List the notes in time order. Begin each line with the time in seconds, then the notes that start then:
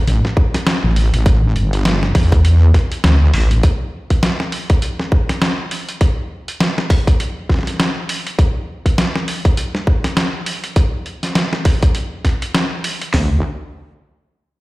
0.07 A1, closed hi-hat
0.25 snare
0.37 kick
0.54 snare, closed hi-hat
0.67 snare, closed hi-hat
0.84 A1
0.96 open hi-hat
1.13 A1, closed hi-hat
1.26 kick, closed hi-hat
1.56 G1, closed hi-hat
1.73 closed hi-hat
1.85 snare, closed hi-hat
2.03 snare
2.15 E2, kick, open hi-hat
2.32 kick, closed hi-hat
2.45 closed hi-hat
2.74 kick, snare, closed hi-hat
2.92 closed hi-hat
3.04 D2, snare, closed hi-hat
3.34 A1, open hi-hat
3.51 closed hi-hat
3.63 kick, closed hi-hat
4.10 kick, closed hi-hat
4.23 snare, closed hi-hat
4.40 snare
4.52 open hi-hat
4.70 kick, closed hi-hat
4.82 closed hi-hat
5.00 snare
5.12 kick
5.29 snare, closed hi-hat
5.42 snare, closed hi-hat
5.71 open hi-hat
5.89 closed hi-hat
6.01 kick, closed hi-hat
6.48 closed hi-hat
6.60 snare, closed hi-hat
6.78 snare
6.90 kick, open hi-hat
7.07 kick, closed hi-hat
7.20 closed hi-hat
7.49 kick, snare
7.54 snare
7.59 snare
7.63 snare
7.67 snare, closed hi-hat
7.70 snare
7.74 snare
7.77 snare
7.80 snare, closed hi-hat
8.09 open hi-hat
8.27 closed hi-hat
8.39 kick, closed hi-hat
8.86 kick, closed hi-hat
8.98 snare, closed hi-hat
9.16 snare
9.28 open hi-hat
9.45 kick, closed hi-hat
9.57 closed hi-hat
9.75 snare
9.87 kick
10.04 snare, closed hi-hat
10.17 snare, closed hi-hat
10.46 open hi-hat
10.64 closed hi-hat
10.76 kick, closed hi-hat
11.06 closed hi-hat
11.23 snare, closed hi-hat
11.35 snare, closed hi-hat
11.53 snare
11.65 kick, open hi-hat
11.82 kick, closed hi-hat
11.95 closed hi-hat
12.25 kick, snare, closed hi-hat
12.42 closed hi-hat
12.55 snare, closed hi-hat
12.84 open hi-hat
13.01 closed hi-hat
13.14 D2, snare, floor tom, open hi-hat